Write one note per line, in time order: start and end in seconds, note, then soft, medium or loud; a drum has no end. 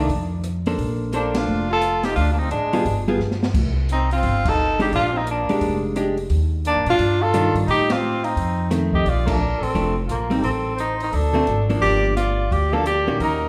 0.00 0.29 D4 medium
0.09 0.75 F2 medium
0.09 kick soft
0.09 open hi-hat soft
0.44 cross-stick medium
0.44 closed hi-hat medium
0.66 1.11 A#3 medium
0.66 1.11 D4 medium
0.66 1.11 A4 medium
0.66 1.11 C5 medium
0.66 open hi-hat soft
0.78 1.44 A#1 medium
0.78 kick soft
0.78 open hi-hat soft
1.12 1.65 A#3 medium
1.12 1.38 A#3 medium
1.12 1.66 D4 medium
1.12 1.39 D4 medium
1.12 1.66 A4 medium
1.12 1.66 C5 medium
1.12 closed hi-hat medium
1.35 1.70 D4 medium
1.35 1.71 F4 loud
1.35 snare medium
1.35 ride medium
1.47 2.13 F1 medium
1.71 2.07 F4 medium
1.71 2.06 A4 loud
1.81 cross-stick medium
1.81 closed hi-hat medium
2.03 2.17 D#4 medium
2.03 2.15 G4 medium
2.03 snare medium
2.03 open hi-hat soft
2.16 2.49 D2 medium
2.16 2.32 D4 medium
2.16 2.32 F4 loud
2.16 kick soft
2.16 open hi-hat soft
2.32 2.40 A#3 medium
2.32 2.40 D4 medium
2.38 2.50 C4 medium
2.38 2.50 D#4 medium
2.50 2.84 A1 medium
2.50 3.03 G#3 medium
2.50 3.04 D4 medium
2.50 closed hi-hat medium
2.73 2.84 G3 medium
2.73 2.84 B3 medium
2.73 2.84 F4 medium
2.73 2.85 G#4 medium
2.73 open hi-hat soft
2.85 3.17 G1 medium
2.85 kick soft
2.85 open hi-hat medium
3.08 3.19 G3 medium
3.08 3.19 B3 medium
3.08 3.19 F4 medium
3.08 3.19 G#4 medium
3.20 3.52 G2 medium
3.20 snare soft
3.31 snare medium
3.43 snare medium
3.54 4.20 C2 medium
3.54 kick medium
3.54 crash medium
3.89 4.11 C4 medium
3.89 4.11 D#4 medium
3.89 closed hi-hat medium
4.11 4.47 C4 medium
4.11 4.50 F4 loud
4.11 open hi-hat soft
4.23 4.89 G1 medium
4.23 kick soft
4.23 open hi-hat soft
4.45 4.79 D#4 medium
4.45 4.81 A4 loud
4.45 kick medium
4.45 crash medium
4.79 4.91 G#3 medium
4.79 4.91 D4 medium
4.79 4.91 D#4 medium
4.79 4.91 G4 medium
4.79 4.92 G4 medium
4.79 open hi-hat soft
4.91 5.45 A#1 medium
4.91 5.13 D4 medium
4.91 kick soft
4.91 open hi-hat soft
4.95 5.19 F4 loud
5.12 5.23 C4 medium
5.17 5.28 D#4 medium
5.24 5.78 A#3 medium
5.24 closed hi-hat medium
5.31 5.81 D4 medium
5.49 5.93 G#3 medium
5.49 5.94 D4 medium
5.49 5.94 G4 medium
5.49 open hi-hat soft
5.61 6.27 F1 medium
5.61 kick soft
5.61 open hi-hat medium
5.96 6.16 G#3 medium
5.96 6.16 D4 medium
5.96 6.16 G4 medium
5.96 cross-stick medium
5.96 closed hi-hat medium
6.17 open hi-hat soft
6.30 6.73 D#2 medium
6.30 kick soft
6.30 open hi-hat medium
6.65 6.86 A#3 medium
6.65 6.86 D4 medium
6.65 closed hi-hat medium
6.76 6.86 G2 medium
6.86 6.97 A#2 medium
6.86 7.23 D4 medium
6.86 7.24 F4 loud
6.86 open hi-hat soft
6.99 7.52 G2 medium
6.99 kick soft
6.99 open hi-hat soft
7.22 7.56 F4 loud
7.22 7.56 A4 loud
7.34 7.68 D#3 medium
7.34 7.68 G3 medium
7.34 7.69 D4 medium
7.34 7.69 F4 medium
7.34 cross-stick medium
7.34 closed hi-hat medium
7.55 7.66 G2 medium
7.55 open hi-hat soft
7.66 8.33 A2 medium
7.66 7.92 D#4 medium
7.66 kick soft
7.66 open hi-hat soft
7.71 7.93 G4 loud
7.90 8.24 C4 medium
7.90 8.26 F4 loud
7.90 snare medium
7.90 ride medium
8.24 8.71 C4 medium
8.24 8.72 D#4 medium
8.24 open hi-hat soft
8.36 9.02 F2 medium
8.36 kick soft
8.36 open hi-hat soft
8.71 9.05 D#3 medium
8.71 9.06 A3 medium
8.71 9.06 C4 medium
8.71 cross-stick medium
8.71 snare soft
8.71 closed hi-hat medium
8.93 9.11 G4 medium
8.93 9.07 D#5 medium
8.93 kick medium
9.05 9.58 A#1 medium
9.05 9.28 D5 medium
9.05 kick soft
9.05 open hi-hat soft
9.10 9.33 F4 medium
9.26 9.38 F3 medium
9.26 9.39 A3 medium
9.26 9.39 D4 medium
9.26 9.62 A#4 medium
9.26 kick medium
9.26 crash medium
9.31 9.65 D4 medium
9.60 9.73 A1 medium
9.60 9.97 C4 medium
9.60 9.96 A4 medium
9.60 open hi-hat soft
9.74 10.07 F1 medium
9.74 9.95 F3 medium
9.74 9.95 A3 medium
9.74 9.95 D4 medium
9.74 kick soft
9.74 open hi-hat soft
10.07 10.41 A#1 medium
10.07 10.35 F4 medium
10.07 cross-stick medium
10.07 closed hi-hat medium
10.11 10.38 A#3 medium
10.30 10.42 G3 medium
10.30 10.42 C4 medium
10.30 10.43 D#4 medium
10.30 open hi-hat soft
10.37 10.42 G4 medium
10.37 10.75 A4 medium
10.42 11.09 A1 medium
10.42 10.46 A#3 medium
10.42 10.79 C4 medium
10.42 kick soft
10.42 open hi-hat soft
10.76 10.97 C5 medium
10.76 closed hi-hat soft
10.80 11.00 D#4 medium
10.98 11.12 C5 medium
10.98 open hi-hat soft
11.03 11.16 D#4 medium
11.11 11.45 D2 medium
11.11 11.70 D4 medium
11.11 11.69 A4 medium
11.11 kick soft
11.11 open hi-hat soft
11.33 11.45 D3 medium
11.33 11.46 A3 medium
11.33 11.46 C4 medium
11.33 11.46 F#4 medium
11.47 11.80 G#1 medium
11.47 cross-stick medium
11.47 closed hi-hat soft
11.70 12.14 F3 medium
11.70 12.14 A#3 medium
11.70 12.14 D4 medium
11.70 open hi-hat soft
11.80 12.48 G1 medium
11.80 12.14 G4 loud
11.80 12.13 D5 loud
11.80 kick soft
11.80 open hi-hat soft
12.16 12.54 F4 medium
12.16 12.52 D5 medium
12.16 snare soft
12.16 closed hi-hat medium
12.51 13.04 D2 medium
12.51 12.75 G4 medium
12.51 12.74 D5 medium
12.51 kick soft
12.51 open hi-hat soft
12.72 12.84 F3 medium
12.72 12.84 A#3 medium
12.72 12.85 D4 medium
12.72 12.86 A4 loud
12.72 12.84 F5 medium
12.84 13.18 G4 loud
12.84 13.17 D5 medium
12.84 cross-stick medium
12.84 closed hi-hat medium
13.07 13.19 A#2 medium
13.07 13.49 D#3 medium
13.07 13.49 A#3 medium
13.07 13.49 C#4 medium
13.07 13.49 F#4 medium
13.20 13.49 D#2 medium
13.20 13.49 D#4 medium
13.20 13.49 A#4 medium
13.20 kick soft
13.20 open hi-hat soft